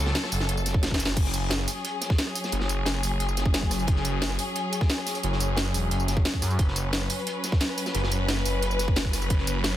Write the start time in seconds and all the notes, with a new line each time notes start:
Already playing: C#2 F#3 C#4 A4
0.06 snare, closed hi-hat
0.15 snare, closed hi-hat
0.23 cross-stick, snare, closed hi-hat
0.31 F#1, closed hi-hat, open hi-hat, tambourine
0.40 snare
0.49 closed hi-hat
0.57 tambourine
0.66 snare, closed hi-hat, tambourine
0.74 kick, cross-stick
0.83 F#1, snare, closed hi-hat
0.91 kick, snare
1.00 closed hi-hat, tambourine
1.05 snare
1.08 snare, tambourine
1.17 F#1 F#3 C#4 G#4, kick, closed hi-hat, crash
1.25 snare
1.34 closed hi-hat, tambourine
1.50 snare, closed hi-hat
1.59 cross-stick
1.68 closed hi-hat, open hi-hat, tambourine
1.77 closed hi-hat
1.85 closed hi-hat
2.01 snare, closed hi-hat, tambourine
2.10 kick, cross-stick, snare
2.18 snare, closed hi-hat
2.27 cross-stick
2.35 closed hi-hat, open hi-hat, tambourine
2.44 snare, tambourine
2.52 F#1, closed hi-hat
2.60 snare
2.69 closed hi-hat, tambourine
2.86 snare, closed hi-hat
2.95 cross-stick
3.03 F#1, closed hi-hat, open hi-hat, tambourine
3.20 closed hi-hat
3.29 tambourine
3.37 snare, closed hi-hat, tambourine
3.46 kick, cross-stick
3.54 snare, closed hi-hat
3.62 kick
3.71 cross-stick, snare, closed hi-hat, open hi-hat, tambourine
3.79 tambourine
3.87 F#1, kick, closed hi-hat
3.96 snare
4.05 closed hi-hat, tambourine
4.22 snare, closed hi-hat
4.30 cross-stick
4.39 closed hi-hat, open hi-hat, tambourine
4.48 closed hi-hat
4.56 closed hi-hat
4.72 closed hi-hat, tambourine
4.81 kick, cross-stick, snare
4.89 snare, closed hi-hat
4.97 cross-stick, closed hi-hat
5.06 snare, open hi-hat, tambourine
5.15 closed hi-hat, tambourine
5.23 F#1, closed hi-hat
5.32 snare
5.40 closed hi-hat, tambourine
5.57 snare, closed hi-hat
5.66 cross-stick
5.74 E1, closed hi-hat, open hi-hat, tambourine
5.91 F#1, closed hi-hat
6.00 tambourine
6.08 snare, closed hi-hat, tambourine
6.17 kick, cross-stick
6.25 snare, closed hi-hat
6.34 kick
6.42 F#2, cross-stick, snare, closed hi-hat, open hi-hat, tambourine
6.51 tambourine
6.59 F#1 B4, kick, closed hi-hat
6.68 snare
6.76 closed hi-hat, tambourine
6.93 snare, closed hi-hat
7.01 cross-stick
7.09 closed hi-hat, open hi-hat, tambourine
7.19 closed hi-hat
7.27 closed hi-hat
7.44 snare, closed hi-hat, tambourine
7.52 kick, cross-stick, snare
7.60 snare, closed hi-hat
7.69 cross-stick
7.78 closed hi-hat, open hi-hat, tambourine
7.86 snare, tambourine
7.95 F#1, closed hi-hat
8.03 snare
8.11 closed hi-hat, tambourine
8.28 snare, closed hi-hat
8.37 cross-stick
8.45 F#1, closed hi-hat, open hi-hat, tambourine
8.62 closed hi-hat
8.71 tambourine
8.79 snare, closed hi-hat, tambourine
8.88 kick, cross-stick
8.96 snare, closed hi-hat
9.05 kick
9.13 cross-stick, snare, closed hi-hat, open hi-hat, tambourine
9.22 tambourine
9.30 F#1, kick, closed hi-hat
9.38 snare
9.47 closed hi-hat, tambourine
9.64 snare, closed hi-hat
9.73 cross-stick